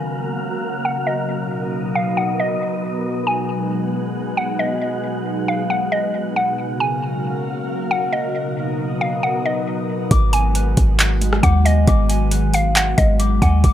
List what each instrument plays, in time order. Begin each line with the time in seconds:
Already playing: ambient pad C#3 F#3 F#4 A#4 F5, synth texture A#3 F#4 F5, synth pluck G#5
0.85 synth pluck F#5
1.07 synth pluck D#5
1.28 ambient pad B2 D#4, synth texture B3 A#4 D#5
1.96 synth pluck F5
2.17 synth pluck F#5
2.40 synth pluck D#5
3.05 ambient pad G#3 D#4 F#4, synth texture G#4 F#5
3.27 synth pluck G#5
4.37 synth pluck F#5
4.59 synth pluck D#5
5.48 synth pluck F5
5.70 synth pluck F#5
5.92 synth pluck D#5
6.36 synth pluck F#5
6.58 ambient pad C#3 F#3 F#4 A#4 F5, synth texture A#3 F#4 F5
6.80 synth pluck G#5
7.91 synth pluck F#5
8.13 synth pluck D#5
8.34 ambient pad B2 F#3 D#4 F#4, synth texture B3 A#4 D#5
9.01 synth pluck F5
9.23 synth pluck F#5
9.46 synth pluck D#5
10.11 808-style bass G#1, ambient pad D#3 F#3 G#3 B3 F#4, clean electric guitar D6, kick, closed hi-hat
10.33 clean electric guitar G#5, synth pluck G#5, closed hi-hat
10.55 clean electric guitar B4, closed hi-hat
10.77 808-style bass G#1, kick, closed hi-hat
10.99 clap, closed hi-hat
11.21 clean electric guitar G#3, closed hi-hat
11.33 cross-stick
11.43 808-style bass D#2, synth pluck F#5, clean electric guitar D6, kick, closed hi-hat
11.65 synth pluck D#5, clean electric guitar G#5, closed hi-hat
11.87 808-style bass G#1, clean electric guitar D6, kick, closed hi-hat
12.09 clean electric guitar G#5, closed hi-hat
12.31 clean electric guitar B4, closed hi-hat
12.54 synth pluck F5, closed hi-hat
12.76 synth pluck F#5, clap, closed hi-hat
12.98 808-style bass G#1, clean electric guitar G#3, synth pluck D#5, kick, closed hi-hat
13.20 clean electric guitar D6, closed hi-hat
13.42 808-style bass D#2, synth pluck F#5, clean electric guitar G#5, kick, closed hi-hat
13.64 808-style bass F#1, ambient pad C#3 C#4 F#4, clean electric guitar D6, kick, closed hi-hat